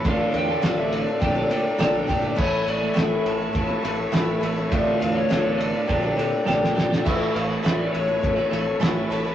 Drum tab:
CC |----------------|x---------------|----------------|x---------------|
RD |x-x-x-x-x-x-x-x-|--x-x-x-x-x-x-x-|x-x-x-x-x-x-----|--x-x-x-x-x-x-x-|
SD |----o-------o---|----o-------o---|----o-------oooo|----o-------o---|
BD |o-------o-----o-|o-------o-------|o-------o-------|o-------o-------|